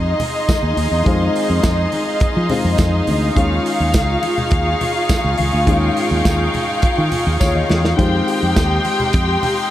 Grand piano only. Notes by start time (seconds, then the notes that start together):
Already playing: D#3 G#3 C4 F4
1.04 D#3 G#3 C4 F4
2.49 D#3 G#3 C4 F4
3.34 D#3 G#3 C#4 F4
5.66 D#3 G#3 C#4 F4
7.40 C#5
7.56 D#5
7.69 F5
7.97 D#3 G#3 C4 F4